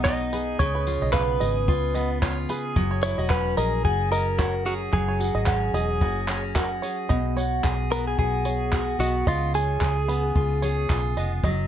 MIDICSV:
0, 0, Header, 1, 6, 480
1, 0, Start_track
1, 0, Key_signature, 5, "major"
1, 0, Tempo, 542005
1, 529, Time_signature, 4, 2, 24, 8
1, 10338, End_track
2, 0, Start_track
2, 0, Title_t, "Five-string banjo"
2, 0, Program_c, 0, 105
2, 42, Note_on_c, 0, 73, 86
2, 171, Note_off_c, 0, 73, 0
2, 291, Note_on_c, 0, 71, 73
2, 415, Note_off_c, 0, 71, 0
2, 663, Note_on_c, 0, 71, 80
2, 764, Note_off_c, 0, 71, 0
2, 904, Note_on_c, 0, 75, 73
2, 1002, Note_off_c, 0, 75, 0
2, 1005, Note_on_c, 0, 77, 73
2, 1235, Note_off_c, 0, 77, 0
2, 1243, Note_on_c, 0, 75, 78
2, 1371, Note_off_c, 0, 75, 0
2, 1723, Note_on_c, 0, 75, 79
2, 1851, Note_off_c, 0, 75, 0
2, 1966, Note_on_c, 0, 73, 88
2, 2092, Note_off_c, 0, 73, 0
2, 2211, Note_on_c, 0, 71, 79
2, 2335, Note_off_c, 0, 71, 0
2, 2576, Note_on_c, 0, 73, 82
2, 2681, Note_off_c, 0, 73, 0
2, 2816, Note_on_c, 0, 75, 85
2, 2916, Note_off_c, 0, 75, 0
2, 2920, Note_on_c, 0, 78, 81
2, 3151, Note_off_c, 0, 78, 0
2, 3165, Note_on_c, 0, 75, 89
2, 3292, Note_off_c, 0, 75, 0
2, 3649, Note_on_c, 0, 75, 85
2, 3774, Note_off_c, 0, 75, 0
2, 3885, Note_on_c, 0, 73, 89
2, 4012, Note_off_c, 0, 73, 0
2, 4126, Note_on_c, 0, 70, 76
2, 4252, Note_off_c, 0, 70, 0
2, 4501, Note_on_c, 0, 73, 72
2, 4603, Note_off_c, 0, 73, 0
2, 4735, Note_on_c, 0, 75, 86
2, 4840, Note_off_c, 0, 75, 0
2, 4849, Note_on_c, 0, 78, 74
2, 5077, Note_off_c, 0, 78, 0
2, 5086, Note_on_c, 0, 75, 89
2, 5212, Note_off_c, 0, 75, 0
2, 5564, Note_on_c, 0, 73, 75
2, 5691, Note_off_c, 0, 73, 0
2, 5803, Note_on_c, 0, 70, 88
2, 5931, Note_off_c, 0, 70, 0
2, 6043, Note_on_c, 0, 73, 71
2, 6170, Note_off_c, 0, 73, 0
2, 6281, Note_on_c, 0, 75, 89
2, 6512, Note_off_c, 0, 75, 0
2, 6524, Note_on_c, 0, 73, 73
2, 6875, Note_off_c, 0, 73, 0
2, 7005, Note_on_c, 0, 71, 76
2, 7132, Note_off_c, 0, 71, 0
2, 7486, Note_on_c, 0, 73, 65
2, 7715, Note_off_c, 0, 73, 0
2, 7971, Note_on_c, 0, 75, 69
2, 8095, Note_off_c, 0, 75, 0
2, 8210, Note_on_c, 0, 75, 103
2, 8437, Note_off_c, 0, 75, 0
2, 8451, Note_on_c, 0, 73, 74
2, 8799, Note_off_c, 0, 73, 0
2, 8931, Note_on_c, 0, 71, 84
2, 9054, Note_off_c, 0, 71, 0
2, 9408, Note_on_c, 0, 73, 74
2, 9635, Note_off_c, 0, 73, 0
2, 9893, Note_on_c, 0, 75, 69
2, 10015, Note_off_c, 0, 75, 0
2, 10131, Note_on_c, 0, 75, 87
2, 10338, Note_off_c, 0, 75, 0
2, 10338, End_track
3, 0, Start_track
3, 0, Title_t, "Clean electric guitar"
3, 0, Program_c, 1, 27
3, 35, Note_on_c, 1, 75, 101
3, 521, Note_off_c, 1, 75, 0
3, 525, Note_on_c, 1, 73, 90
3, 993, Note_off_c, 1, 73, 0
3, 997, Note_on_c, 1, 71, 83
3, 1927, Note_off_c, 1, 71, 0
3, 2682, Note_on_c, 1, 73, 101
3, 2908, Note_off_c, 1, 73, 0
3, 2925, Note_on_c, 1, 71, 103
3, 3149, Note_off_c, 1, 71, 0
3, 3164, Note_on_c, 1, 70, 98
3, 3389, Note_off_c, 1, 70, 0
3, 3407, Note_on_c, 1, 68, 97
3, 3643, Note_off_c, 1, 68, 0
3, 3646, Note_on_c, 1, 70, 86
3, 4123, Note_off_c, 1, 70, 0
3, 4127, Note_on_c, 1, 66, 81
3, 4191, Note_off_c, 1, 66, 0
3, 4368, Note_on_c, 1, 68, 77
3, 5772, Note_off_c, 1, 68, 0
3, 7011, Note_on_c, 1, 70, 94
3, 7132, Note_off_c, 1, 70, 0
3, 7151, Note_on_c, 1, 68, 81
3, 7245, Note_off_c, 1, 68, 0
3, 7255, Note_on_c, 1, 68, 88
3, 7936, Note_off_c, 1, 68, 0
3, 7970, Note_on_c, 1, 66, 74
3, 8216, Note_off_c, 1, 66, 0
3, 8219, Note_on_c, 1, 65, 85
3, 8454, Note_off_c, 1, 65, 0
3, 8457, Note_on_c, 1, 68, 90
3, 9855, Note_off_c, 1, 68, 0
3, 10338, End_track
4, 0, Start_track
4, 0, Title_t, "Steel-string acoustic guitar"
4, 0, Program_c, 2, 25
4, 0, Note_on_c, 2, 47, 80
4, 0, Note_on_c, 2, 59, 58
4, 0, Note_on_c, 2, 68, 68
4, 55, Note_on_c, 2, 63, 64
4, 293, Note_off_c, 2, 68, 0
4, 296, Note_on_c, 2, 68, 70
4, 526, Note_off_c, 2, 47, 0
4, 531, Note_on_c, 2, 49, 92
4, 585, Note_off_c, 2, 63, 0
4, 769, Note_on_c, 2, 65, 59
4, 796, Note_off_c, 2, 59, 0
4, 1009, Note_on_c, 2, 59, 59
4, 1248, Note_off_c, 2, 68, 0
4, 1252, Note_on_c, 2, 68, 64
4, 1478, Note_off_c, 2, 65, 0
4, 1489, Note_on_c, 2, 65, 73
4, 1719, Note_off_c, 2, 59, 0
4, 1729, Note_on_c, 2, 59, 59
4, 1955, Note_off_c, 2, 65, 0
4, 1965, Note_on_c, 2, 65, 65
4, 2200, Note_off_c, 2, 68, 0
4, 2204, Note_on_c, 2, 68, 67
4, 2442, Note_off_c, 2, 49, 0
4, 2445, Note_on_c, 2, 54, 87
4, 2499, Note_off_c, 2, 65, 0
4, 2501, Note_off_c, 2, 59, 0
4, 2690, Note_on_c, 2, 64, 59
4, 2820, Note_off_c, 2, 64, 0
4, 2820, Note_on_c, 2, 66, 52
4, 2846, Note_off_c, 2, 68, 0
4, 2923, Note_on_c, 2, 61, 64
4, 3170, Note_on_c, 2, 68, 67
4, 3395, Note_off_c, 2, 66, 0
4, 3406, Note_on_c, 2, 66, 67
4, 3633, Note_off_c, 2, 61, 0
4, 3644, Note_on_c, 2, 61, 61
4, 3875, Note_off_c, 2, 66, 0
4, 3879, Note_on_c, 2, 66, 64
4, 4116, Note_off_c, 2, 68, 0
4, 4120, Note_on_c, 2, 68, 72
4, 4359, Note_off_c, 2, 54, 0
4, 4362, Note_on_c, 2, 54, 79
4, 4601, Note_off_c, 2, 66, 0
4, 4604, Note_on_c, 2, 66, 55
4, 4825, Note_off_c, 2, 61, 0
4, 4835, Note_on_c, 2, 61, 59
4, 5079, Note_off_c, 2, 68, 0
4, 5083, Note_on_c, 2, 68, 71
4, 5316, Note_off_c, 2, 66, 0
4, 5320, Note_on_c, 2, 66, 70
4, 5548, Note_off_c, 2, 61, 0
4, 5558, Note_on_c, 2, 61, 65
4, 5797, Note_off_c, 2, 66, 0
4, 5801, Note_on_c, 2, 66, 58
4, 6047, Note_off_c, 2, 68, 0
4, 6051, Note_on_c, 2, 68, 60
4, 6281, Note_on_c, 2, 47, 83
4, 6336, Note_off_c, 2, 61, 0
4, 6517, Note_off_c, 2, 66, 0
4, 6521, Note_on_c, 2, 66, 54
4, 6548, Note_off_c, 2, 68, 0
4, 6759, Note_on_c, 2, 68, 65
4, 6785, Note_off_c, 2, 54, 0
4, 7006, Note_on_c, 2, 59, 57
4, 7233, Note_off_c, 2, 66, 0
4, 7244, Note_on_c, 2, 66, 57
4, 7479, Note_off_c, 2, 68, 0
4, 7483, Note_on_c, 2, 68, 62
4, 7712, Note_off_c, 2, 66, 0
4, 7723, Note_on_c, 2, 66, 55
4, 7956, Note_off_c, 2, 59, 0
4, 7960, Note_on_c, 2, 59, 53
4, 8204, Note_off_c, 2, 47, 0
4, 8210, Note_on_c, 2, 49, 81
4, 8258, Note_off_c, 2, 66, 0
4, 8450, Note_on_c, 2, 65, 51
4, 8477, Note_off_c, 2, 59, 0
4, 8683, Note_off_c, 2, 68, 0
4, 8686, Note_on_c, 2, 68, 66
4, 8927, Note_on_c, 2, 59, 55
4, 9161, Note_off_c, 2, 65, 0
4, 9171, Note_on_c, 2, 65, 58
4, 9406, Note_off_c, 2, 68, 0
4, 9416, Note_on_c, 2, 68, 71
4, 9646, Note_off_c, 2, 65, 0
4, 9657, Note_on_c, 2, 65, 61
4, 9886, Note_off_c, 2, 59, 0
4, 9900, Note_on_c, 2, 59, 53
4, 10127, Note_off_c, 2, 49, 0
4, 10136, Note_on_c, 2, 54, 86
4, 10183, Note_off_c, 2, 68, 0
4, 10184, Note_off_c, 2, 65, 0
4, 10185, Note_off_c, 2, 59, 0
4, 10338, Note_off_c, 2, 54, 0
4, 10338, End_track
5, 0, Start_track
5, 0, Title_t, "Fingered electric bass"
5, 0, Program_c, 3, 33
5, 0, Note_on_c, 3, 35, 108
5, 494, Note_off_c, 3, 35, 0
5, 529, Note_on_c, 3, 37, 100
5, 871, Note_off_c, 3, 37, 0
5, 903, Note_on_c, 3, 35, 78
5, 1222, Note_off_c, 3, 35, 0
5, 1251, Note_on_c, 3, 32, 107
5, 1470, Note_off_c, 3, 32, 0
5, 1489, Note_on_c, 3, 37, 120
5, 2173, Note_off_c, 3, 37, 0
5, 2446, Note_on_c, 3, 30, 104
5, 2789, Note_off_c, 3, 30, 0
5, 2820, Note_on_c, 3, 28, 83
5, 3140, Note_off_c, 3, 28, 0
5, 3169, Note_on_c, 3, 34, 86
5, 3389, Note_off_c, 3, 34, 0
5, 3410, Note_on_c, 3, 30, 109
5, 4333, Note_off_c, 3, 30, 0
5, 4369, Note_on_c, 3, 30, 101
5, 4711, Note_off_c, 3, 30, 0
5, 4737, Note_on_c, 3, 32, 81
5, 5059, Note_off_c, 3, 32, 0
5, 5079, Note_on_c, 3, 28, 82
5, 5326, Note_off_c, 3, 28, 0
5, 5326, Note_on_c, 3, 30, 112
5, 6012, Note_off_c, 3, 30, 0
5, 6292, Note_on_c, 3, 35, 90
5, 6734, Note_off_c, 3, 35, 0
5, 6765, Note_on_c, 3, 35, 81
5, 7211, Note_off_c, 3, 35, 0
5, 7251, Note_on_c, 3, 35, 94
5, 7934, Note_off_c, 3, 35, 0
5, 7961, Note_on_c, 3, 35, 75
5, 8185, Note_off_c, 3, 35, 0
5, 8211, Note_on_c, 3, 37, 97
5, 8654, Note_off_c, 3, 37, 0
5, 8685, Note_on_c, 3, 37, 86
5, 9130, Note_off_c, 3, 37, 0
5, 9172, Note_on_c, 3, 37, 93
5, 9613, Note_off_c, 3, 37, 0
5, 9650, Note_on_c, 3, 35, 88
5, 9869, Note_off_c, 3, 35, 0
5, 9892, Note_on_c, 3, 29, 79
5, 10110, Note_off_c, 3, 29, 0
5, 10126, Note_on_c, 3, 30, 98
5, 10338, Note_off_c, 3, 30, 0
5, 10338, End_track
6, 0, Start_track
6, 0, Title_t, "Drums"
6, 48, Note_on_c, 9, 39, 100
6, 49, Note_on_c, 9, 36, 115
6, 137, Note_off_c, 9, 39, 0
6, 138, Note_off_c, 9, 36, 0
6, 290, Note_on_c, 9, 54, 58
6, 379, Note_off_c, 9, 54, 0
6, 530, Note_on_c, 9, 36, 110
6, 618, Note_off_c, 9, 36, 0
6, 769, Note_on_c, 9, 54, 60
6, 857, Note_off_c, 9, 54, 0
6, 1001, Note_on_c, 9, 39, 116
6, 1006, Note_on_c, 9, 36, 115
6, 1090, Note_off_c, 9, 39, 0
6, 1094, Note_off_c, 9, 36, 0
6, 1249, Note_on_c, 9, 54, 58
6, 1337, Note_off_c, 9, 54, 0
6, 1490, Note_on_c, 9, 36, 109
6, 1578, Note_off_c, 9, 36, 0
6, 1729, Note_on_c, 9, 54, 71
6, 1818, Note_off_c, 9, 54, 0
6, 1971, Note_on_c, 9, 36, 114
6, 1975, Note_on_c, 9, 39, 99
6, 2059, Note_off_c, 9, 36, 0
6, 2063, Note_off_c, 9, 39, 0
6, 2207, Note_on_c, 9, 54, 60
6, 2295, Note_off_c, 9, 54, 0
6, 2447, Note_on_c, 9, 36, 118
6, 2535, Note_off_c, 9, 36, 0
6, 2689, Note_on_c, 9, 54, 68
6, 2778, Note_off_c, 9, 54, 0
6, 2922, Note_on_c, 9, 39, 118
6, 2926, Note_on_c, 9, 36, 113
6, 3011, Note_off_c, 9, 39, 0
6, 3014, Note_off_c, 9, 36, 0
6, 3169, Note_on_c, 9, 54, 61
6, 3258, Note_off_c, 9, 54, 0
6, 3409, Note_on_c, 9, 36, 102
6, 3498, Note_off_c, 9, 36, 0
6, 3651, Note_on_c, 9, 54, 74
6, 3739, Note_off_c, 9, 54, 0
6, 3889, Note_on_c, 9, 36, 117
6, 3893, Note_on_c, 9, 39, 93
6, 3978, Note_off_c, 9, 36, 0
6, 3981, Note_off_c, 9, 39, 0
6, 4130, Note_on_c, 9, 54, 58
6, 4218, Note_off_c, 9, 54, 0
6, 4369, Note_on_c, 9, 36, 116
6, 4457, Note_off_c, 9, 36, 0
6, 4610, Note_on_c, 9, 54, 66
6, 4698, Note_off_c, 9, 54, 0
6, 4838, Note_on_c, 9, 39, 106
6, 4845, Note_on_c, 9, 36, 122
6, 4927, Note_off_c, 9, 39, 0
6, 4933, Note_off_c, 9, 36, 0
6, 5088, Note_on_c, 9, 54, 60
6, 5176, Note_off_c, 9, 54, 0
6, 5326, Note_on_c, 9, 36, 105
6, 5414, Note_off_c, 9, 36, 0
6, 5563, Note_on_c, 9, 54, 70
6, 5565, Note_on_c, 9, 39, 95
6, 5651, Note_off_c, 9, 54, 0
6, 5654, Note_off_c, 9, 39, 0
6, 5808, Note_on_c, 9, 36, 102
6, 5809, Note_on_c, 9, 39, 105
6, 5897, Note_off_c, 9, 36, 0
6, 5898, Note_off_c, 9, 39, 0
6, 6051, Note_on_c, 9, 54, 56
6, 6139, Note_off_c, 9, 54, 0
6, 6289, Note_on_c, 9, 36, 106
6, 6377, Note_off_c, 9, 36, 0
6, 6535, Note_on_c, 9, 54, 60
6, 6623, Note_off_c, 9, 54, 0
6, 6768, Note_on_c, 9, 36, 101
6, 6769, Note_on_c, 9, 39, 103
6, 6857, Note_off_c, 9, 36, 0
6, 6857, Note_off_c, 9, 39, 0
6, 7018, Note_on_c, 9, 54, 50
6, 7107, Note_off_c, 9, 54, 0
6, 7251, Note_on_c, 9, 36, 98
6, 7339, Note_off_c, 9, 36, 0
6, 7484, Note_on_c, 9, 54, 70
6, 7573, Note_off_c, 9, 54, 0
6, 7728, Note_on_c, 9, 36, 111
6, 7729, Note_on_c, 9, 39, 98
6, 7817, Note_off_c, 9, 36, 0
6, 7817, Note_off_c, 9, 39, 0
6, 7969, Note_on_c, 9, 54, 53
6, 8058, Note_off_c, 9, 54, 0
6, 8210, Note_on_c, 9, 36, 113
6, 8299, Note_off_c, 9, 36, 0
6, 8450, Note_on_c, 9, 54, 65
6, 8539, Note_off_c, 9, 54, 0
6, 8688, Note_on_c, 9, 39, 103
6, 8689, Note_on_c, 9, 36, 106
6, 8777, Note_off_c, 9, 36, 0
6, 8777, Note_off_c, 9, 39, 0
6, 8937, Note_on_c, 9, 54, 59
6, 9026, Note_off_c, 9, 54, 0
6, 9172, Note_on_c, 9, 36, 103
6, 9261, Note_off_c, 9, 36, 0
6, 9409, Note_on_c, 9, 54, 66
6, 9498, Note_off_c, 9, 54, 0
6, 9651, Note_on_c, 9, 36, 107
6, 9655, Note_on_c, 9, 39, 90
6, 9740, Note_off_c, 9, 36, 0
6, 9744, Note_off_c, 9, 39, 0
6, 9892, Note_on_c, 9, 54, 54
6, 9981, Note_off_c, 9, 54, 0
6, 10128, Note_on_c, 9, 36, 112
6, 10216, Note_off_c, 9, 36, 0
6, 10338, End_track
0, 0, End_of_file